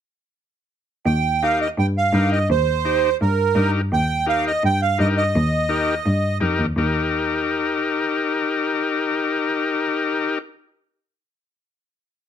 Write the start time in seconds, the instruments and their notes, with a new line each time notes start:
1.05 cello D#2, accordion G5
1.43 transistor combo organ D#4 G4 A#4, accordion F5
1.62 accordion D#5
1.77 cello G2, accordion G5
1.98 accordion F5
2.13 cello G2, transistor combo organ D#4 G4 A#4
2.32 accordion D#5
2.49 cello D#2, accordion C5
2.85 transistor combo organ D#4 G4 C5
3.21 cello G2, accordion A#4
3.55 cello G2, transistor combo organ D#4 G4 A#4
3.92 cello D#2, accordion G5
4.26 transistor combo organ D#4 G4 A#4, accordion F5
4.47 accordion D#5
4.63 cello G2, accordion G5
4.82 accordion F5
4.98 cello G2, transistor combo organ D#4 G4 A#4, accordion D#5
5.17 accordion D#5
5.35 cello D#2
5.69 transistor combo organ D#4 G4 A#4
6.05 cello G2
6.40 cello F2, transistor combo organ D#4 G4 A#4
6.59 cello D#2
6.76 cello D#2, transistor combo organ D#4 G4 A#4